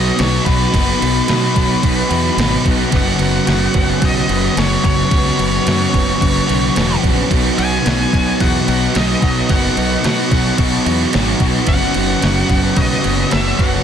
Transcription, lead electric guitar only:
Already playing: D#5
0.19 C#5
0.45 B4
2.97 F#5
4.05 D#5
4.59 C#5
4.85 C#5
7.59 G#5
8.41 F#5
8.69 F#5
8.96 D#5
9.50 F#5
10.05 F#5
11.69 F#5
12.77 D#5
13.32 E5
13.58 F#5

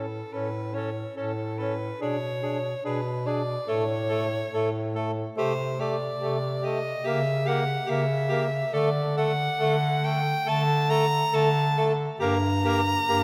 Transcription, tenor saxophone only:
0.34 C#4
0.74 C#4
1.16 C#4
1.60 C#4
2.01 D4
2.43 D4
2.84 D4
3.26 D4
3.68 A3
4.10 A3
4.54 A3
4.95 A3
5.37 A3
5.80 A3
6.22 A3
6.64 A3
7.06 A#3
7.47 A#3
7.89 A#3
8.31 A#3
8.74 A3
9.18 A3
9.60 A3
10.03 A3
10.47 A3
10.89 A3
11.34 A3
11.77 A3
12.21 A#3
12.65 A#3
13.09 A#3

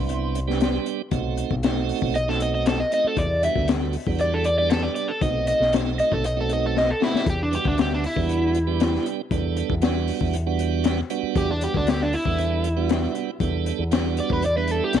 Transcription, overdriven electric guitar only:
Already playing: C6
2.16 D#5
2.29 A4
2.42 D#5
2.55 D#5
2.67 A4
2.80 D#5
2.94 D#5
3.07 A4
3.18 D5
3.45 E5
4.21 D5
4.34 A4
4.45 D5
4.58 D5
4.70 A4
4.83 D5
4.95 D5
5.08 A4
5.22 D#5
5.48 D#5
6.00 D#5
6.13 A4
6.25 D#5
6.41 A4
6.53 D#5
6.66 A4
6.78 D#5
6.91 A4
7.03 E4
7.30 G4
7.43 D4
7.55 G4
7.67 D4
7.81 G4
7.94 D4
8.06 E4
11.38 G4
11.51 D4
11.64 G4
11.77 D4
11.89 G4
12.02 D4
12.14 E4
14.20 D5
14.33 B4
14.46 D5
14.57 B4
14.71 A4
14.84 G4

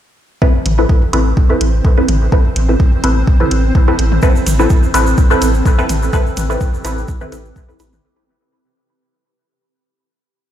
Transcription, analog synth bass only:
0.66 A1
1.13 A1
1.61 A1
2.08 A1
2.56 A1
3.04 A1
3.51 A1
3.99 A1
4.46 A1
4.94 A1
5.42 A1
5.89 A1
6.37 A1
6.85 A1
7.32 A1
7.80 A1

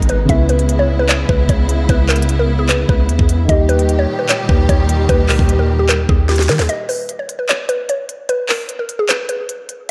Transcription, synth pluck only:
0.09 B4
0.30 E5
0.49 B4
0.79 C#5
0.99 B4
1.09 C#5
1.29 B4
1.49 C#5
1.89 B4
2.09 A#4
2.39 A#4
2.59 G#4
2.69 B4
2.89 B4
3.49 D#5
3.69 B4
3.99 C#5
4.19 B4
4.29 C#5
4.49 B4
4.69 C#5
5.09 B4
5.29 A#4
5.59 A#4
5.79 G4
5.89 A#4
6.09 G#4
6.29 G4
6.49 A#4
6.69 D#5
6.89 B4
7.19 C#5
7.39 B4
7.49 C#5
7.69 B4
7.89 C#5
8.29 B4
8.49 A#4
8.79 A#4
8.99 G#4
9.09 B4
9.29 B4

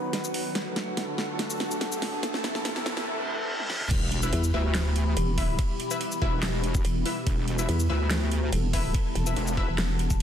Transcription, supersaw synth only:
Already playing: D#3 F#3 B3 F#4 B4
0.55 D3 A3 F#4 A4
2.23 C3 E3 E4 A4
3.91 B2 E3 G3 E4 G4
7.26 A4

